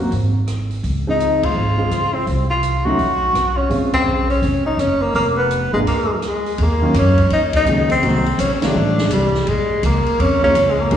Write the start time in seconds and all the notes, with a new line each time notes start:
0.00 A#3 C4 F#4
0.11 G#1, kick, open hi-hat
0.47 cross-stick, closed hi-hat
0.71 open hi-hat
0.83 C#2, kick, open hi-hat
1.07 F3 G#3 C4 D#4
1.20 closed hi-hat
1.43 D2 F4, kick, ride
1.55 G#1
1.78 F3 G#3 C4 F4
1.91 C#2, cross-stick, closed hi-hat
2.15 C4
2.27 C2, kick, open hi-hat
2.51 F4
2.63 closed hi-hat
2.85 F#3 A3 C#4 D#4 F#4
2.98 B1, kick, open hi-hat
3.33 B1, cross-stick, closed hi-hat
3.57 C#4
3.69 A#1 C#3 G#3 C4 F4, kick, open hi-hat
3.93 C4, kick, ride
4.06 B1
4.30 C#4, open hi-hat
4.42 F1, kick, open hi-hat
4.66 D#4
4.77 F#1 C#4, cross-stick, closed hi-hat
5.02 A#3
5.14 F1 A#3, kick, open hi-hat
5.37 B3
5.51 closed hi-hat
5.72 G#1 G#3 A#3 D4 F4
5.87 A#3, kick, open hi-hat, crash
6.22 cross-stick, closed hi-hat
6.28 G#3
6.46 open hi-hat
6.58 D#2, kick, ride
6.63 A#3
6.82 D#3 F#3 A#3 C#4 F4
6.94 F#2, kick, hi-hat pedal, ride
6.98 C#4
7.17 kick, ride
7.30 D#2 D#4, kick, ride
7.53 D#4, kick, ride
7.65 C#2 D#3 F#3 A#3 C#4 G#4, hi-hat pedal
7.90 C4, ride
8.02 C2 D#3 F#3 A#3 C4 F#4, kick, ride
8.26 ride
8.38 A#1 C#4, kick, hi-hat pedal, ride
8.54 C#4
8.62 D#3 G3 A3 C4 D4 F4, snare, ride
8.74 A1, kick
8.98 snare
9.11 C2 G3, kick, hi-hat pedal, ride
9.34 snare
9.47 A#1 G#3, kick, ride
9.83 C#2 A#3, kick, hi-hat pedal, ride
10.06 muted upright bass stroke, ride
10.19 F2 C#4, kick, ride
10.42 F3 G#3 A#3 C#4 F4, kick
10.55 C#2, kick, hi-hat pedal, ride
10.71 G#3
10.80 A#3
10.91 G#1 B2 F#3 G#3 A#3 D#4, kick, ride